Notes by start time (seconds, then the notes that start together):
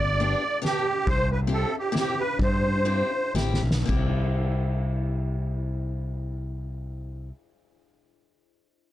Already playing: G1 D5
0.03 ride
0.20 B3 D4 G4, ride
0.62 B3 D4 G4, snare, ride
1.07 C2 C5, kick, ride
1.32 B4
1.47 C4 E4 G4, ride
1.53 A4
1.79 G4
1.92 C4 E4 G4, snare, ride
1.99 G4
2.20 B4
2.39 G2, kick, ride
2.43 C5
2.66 ride
2.85 C4 E4 G4, ride
3.34 A1 C4 E4 G4, snare
3.54 snare
3.63 B1
3.71 snare
3.86 C2 C4 E4 G4, kick, crash